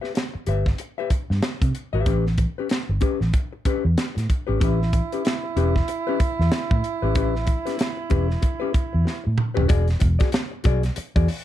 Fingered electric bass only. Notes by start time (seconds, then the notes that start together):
0.35 muted fingered electric bass stroke
0.47 G1
1.11 muted fingered electric bass stroke
1.30 G2
1.62 C3
1.93 G#1
2.07 A1
2.89 G1
3.21 A1
3.66 muted fingered electric bass stroke
3.85 E2
4.17 A2
4.49 G#1
4.62 A1
5.56 E1
6.20 muted fingered electric bass stroke
6.39 E2
6.71 A2
7.02 G#1
7.15 A1
8.11 E1
8.75 muted fingered electric bass stroke
8.94 E2
9.27 A2
9.58 D#1
9.70 E1
10.01 E1
10.65 B1
10.98 muted fingered electric bass stroke
11.16 E2